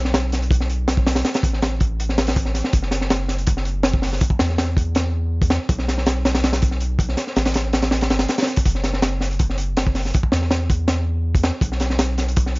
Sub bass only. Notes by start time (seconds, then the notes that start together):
Already playing: B1
1.43 A1
2.73 F#1
4.40 E2
5.69 B1
7.36 A1
8.10 G1
8.66 F#1
10.33 E2
11.62 B1